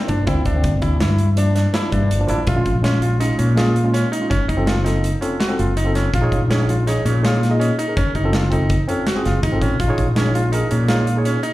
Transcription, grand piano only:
0.08 0.21 D4 medium
0.27 0.40 E4 medium
0.46 0.72 D4 medium
0.82 0.95 E4 medium
1.01 1.27 E4 medium
1.38 1.51 D4 medium
1.55 1.69 D4 medium
1.74 1.87 E4 medium
1.92 2.18 D4 medium
2.29 2.42 E4 medium
2.48 2.74 F4 medium
2.84 2.97 C#4 medium
3.02 3.15 F4 medium
3.20 3.33 D#4 medium
3.38 3.52 C#4 medium
3.57 3.83 F4 medium
3.94 4.07 C#4 medium
4.12 4.25 D#4 medium
4.30 4.43 C#4 medium
4.48 4.62 D#4 medium
4.66 4.80 F4 medium
4.84 5.11 D#4 medium
5.21 5.34 C#4 medium
5.40 5.53 F#4 medium
5.59 5.72 F4 medium
5.77 5.90 D#4 medium
5.95 6.08 C#4 medium
6.14 6.40 F4 medium
6.50 6.64 C#4 medium
6.69 6.82 F4 medium
6.87 7.00 D#4 medium
7.05 7.19 C#4 medium
7.25 7.51 F4 medium
7.60 7.73 C#4 medium
7.79 7.92 D#4 medium
7.97 8.10 C#4 medium
8.15 8.28 D#4 medium
8.34 8.47 F4 medium
8.53 8.78 D#4 medium
8.88 9.01 C#4 medium
9.07 9.20 F#4 medium
9.26 9.39 F4 medium
9.43 9.56 D#4 medium
9.62 9.75 C#4 medium
9.80 10.06 F4 medium
10.17 10.30 C#4 medium
10.35 10.48 F4 medium
10.52 10.65 D#4 medium
10.71 10.84 C#4 medium
10.89 11.15 F4 medium
11.25 11.38 C#4 medium
11.43 11.53 D#4 medium

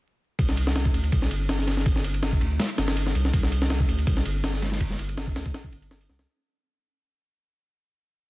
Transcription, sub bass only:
0.39 0.93 C2 medium
0.94 1.11 D2 medium
1.12 1.29 C2 loud
1.31 2.40 G1 loud
2.41 2.58 D2 medium
2.78 3.14 G1 medium
3.15 3.32 C2 loud
3.33 3.87 C2 loud
3.88 4.05 D2 medium
4.07 4.24 C2 loud
4.25 5.34 G1 loud
5.36 5.53 D2 medium
5.72 6.08 G1 medium
6.09 6.26 C2 loud

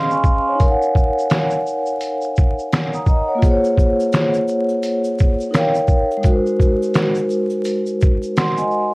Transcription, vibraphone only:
0.00 0.17 C#4 medium
0.00 0.19 G#4 medium
0.00 0.10 F5 medium
0.00 0.26 C6 medium
0.00 0.62 F6 medium
0.11 0.24 G#5 medium
0.11 0.24 C#6 medium
0.26 0.46 F5 medium
0.26 0.45 C6 medium
0.47 0.61 C#5 soft
0.47 0.80 G#5 medium
0.55 3.36 D#4 medium
0.55 3.38 A#4 medium
0.62 2.34 C#5 medium
0.66 2.36 F5 medium
0.66 2.38 F#5 medium
2.94 3.07 A#5 medium
2.94 3.07 D#6 medium
3.08 3.28 D#5 medium
3.08 3.28 A#5 medium
3.28 3.49 C#5 medium
3.28 3.61 F#5 medium
3.35 5.46 A#3 medium
3.35 5.48 F4 medium
3.43 5.50 G#4 medium
3.43 5.52 C5 medium
3.51 5.53 C#5 medium
5.51 6.20 D#4 medium
5.51 6.24 A#4 medium
5.51 6.25 C#5 medium
5.56 6.26 F5 medium
5.56 6.27 G5 medium
6.17 8.94 G#3 medium
6.17 8.94 D#4 medium
6.25 8.94 F#4 medium
6.29 8.94 A#4 medium
6.29 8.36 C5 medium
8.37 8.57 F#5 medium
8.37 8.57 C6 medium
8.58 8.91 D#5 medium
8.58 8.91 G#5 medium

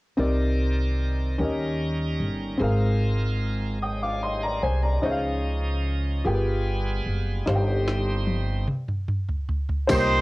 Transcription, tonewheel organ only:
0.17 1.39 D#3 soft
0.17 1.39 C4 soft
0.17 1.37 A#4 medium
0.17 1.39 D5 soft
1.38 2.60 G3 soft
1.38 2.61 C#4 soft
1.38 2.60 D#4 soft
1.38 2.58 A#4 medium
2.59 4.99 G#3 soft
2.59 3.79 C4 soft
2.59 3.79 F4 soft
2.59 3.79 A#4 medium
3.82 4.02 G4 soft
3.82 4.02 D#5 soft
4.03 4.22 F4 soft
4.03 4.22 D5 soft
4.23 4.42 D#4 soft
4.23 4.42 C5 soft
4.43 4.62 D4 soft
4.43 4.62 A#4 medium
4.63 4.83 C4 soft
4.63 4.82 G#4 soft
4.83 5.22 D4 soft
4.83 5.22 A#4 soft
5.03 5.10 D#3 soft
5.03 6.25 C#4 soft
5.03 6.25 D#4 soft
5.03 6.25 D#5 medium
5.10 6.28 F3 medium
6.25 7.46 G3 medium
6.25 7.47 B3 soft
6.25 7.47 F4 medium
6.25 7.47 G#4 medium
7.47 8.69 G3 medium
7.47 8.68 C4 soft
7.47 8.69 D#4 soft
7.47 8.68 C5 medium
9.89 10.21 G3 medium
9.89 10.21 A#3 medium
9.89 10.21 D#4 medium
9.89 9.96 A4 medium
9.89 10.21 C5 medium
9.96 10.21 A#4 medium

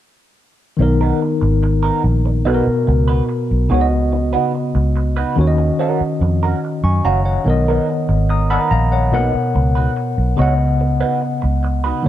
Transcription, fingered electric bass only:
0.79 1.11 B1 medium
1.42 1.89 G#1 medium
2.04 2.46 A#1 medium
2.46 2.62 B1 medium
2.67 muted fingered electric bass stroke soft
2.88 3.20 C#2 medium
3.51 3.67 B1 medium
3.71 4.34 C#2 medium
4.75 5.23 C#2 medium
5.37 5.69 D#2 medium
6.01 muted fingered electric bass stroke soft
6.21 6.53 F2 medium
6.84 7.00 F#2 medium
7.05 7.37 F#1 medium
7.46 7.78 B1 medium
8.09 8.56 G#1 medium
8.71 9.14 A#1 medium
9.14 9.29 B1 loud
9.34 muted fingered electric bass stroke soft
9.55 9.87 C#2 medium
10.18 10.34 B1 medium
10.39 11.02 C#2 medium
11.44 11.91 C#2 medium

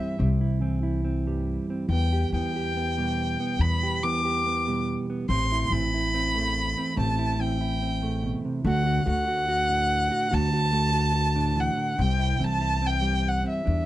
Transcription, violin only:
0.00 0.21 E5 medium
1.91 2.30 G5 medium
2.33 3.62 G5 medium
3.61 4.05 B5 medium
4.03 4.87 D6 medium
5.30 5.74 C6 medium
5.72 6.98 B5 medium
6.99 7.43 A5 medium
7.41 8.24 G5 medium
8.68 9.05 F#5 medium
9.09 10.36 F#5 medium
10.34 11.61 A5 loud
11.60 12.03 F#5 medium
12.01 12.46 G5 medium
12.44 12.88 A5 medium
12.87 13.30 G5 medium
13.28 13.48 F#5 medium
13.49 13.86 E5 medium

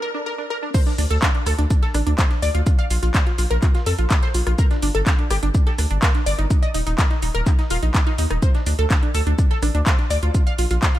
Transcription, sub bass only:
0.98 1.06 D2 medium
1.11 1.18 D2 medium
1.46 1.54 D2 loud
1.59 1.66 D2 medium
1.94 2.02 A1 medium
2.07 2.14 D2 medium
2.42 2.50 D2 medium
2.55 2.62 D2 medium
2.90 2.98 A#1 loud
3.03 3.10 A#1 medium
3.38 3.46 A#1 loud
3.51 3.58 A#1 medium
3.86 3.94 F2 loud
3.99 4.06 A#1 medium
4.34 4.42 A#1 medium
4.47 4.54 A#1 medium
4.83 4.90 G1 medium
4.95 5.02 G1 medium
5.30 5.38 G1 medium
5.43 5.50 G1 medium
5.79 5.86 D2 loud
5.91 5.98 G1 medium
6.26 6.34 G1 medium
6.39 6.46 G1 medium
6.74 6.82 D#1 medium
6.87 6.94 D#1 medium
7.22 7.30 D#1 loud
7.35 7.42 D#1 medium
7.70 7.78 D#1 medium
7.83 7.90 A#1 medium
8.18 8.26 D#2 loud
8.31 8.38 D#1 medium
8.66 8.74 D2 medium
8.79 8.86 D2 medium
9.14 9.22 D2 medium
9.26 9.34 D2 medium
9.62 9.70 A1 medium
9.74 9.82 D2 medium
10.10 10.18 D2 medium
10.23 10.30 D2 medium
10.58 10.66 A#1 medium
10.71 10.78 A#1 medium

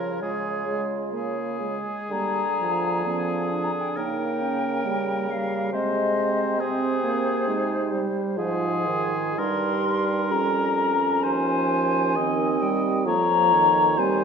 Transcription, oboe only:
0.00 0.22 A#4 soft
0.23 0.84 G#4 soft
1.12 3.98 G#4 soft
3.96 5.72 A#4 soft
5.73 6.61 C5 soft
6.60 8.10 G#4 medium
8.38 9.40 G#4 medium
9.39 9.86 A#4 medium
9.86 11.25 A#4 medium
11.23 12.18 C5 medium
12.16 13.06 D#5 medium
13.07 13.99 C#5 medium
13.98 14.24 C5 medium

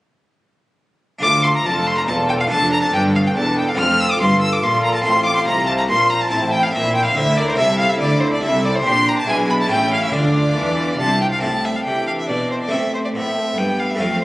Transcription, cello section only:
1.23 1.63 D2 medium
1.66 2.08 F2 medium
2.08 2.51 E2 medium
2.51 2.93 F2 medium
2.93 3.35 G2 medium
3.36 3.78 E2 medium
3.79 4.20 F2 medium
4.21 4.63 G2 medium
4.64 5.05 A#2 medium
5.06 5.47 A2 medium
5.48 5.89 C3 medium
5.90 6.32 A#2 medium
6.32 6.73 A2 medium
6.74 7.15 A#2 medium
7.16 7.57 D3 medium
7.58 7.99 C3 medium
8.00 8.42 D3 medium
8.42 8.84 C3 medium
8.85 9.27 A#2 medium
9.27 9.69 B2 medium
9.70 10.13 A2 medium
10.13 10.56 D3 medium
10.56 11.00 E3 medium
11.00 11.43 C3 medium
11.44 11.84 A2 soft
11.86 12.26 C3 medium
12.29 12.69 B2 medium
12.72 13.12 C3 medium
13.15 13.54 A2 medium
13.57 13.97 G2 medium
13.99 14.24 F2 medium

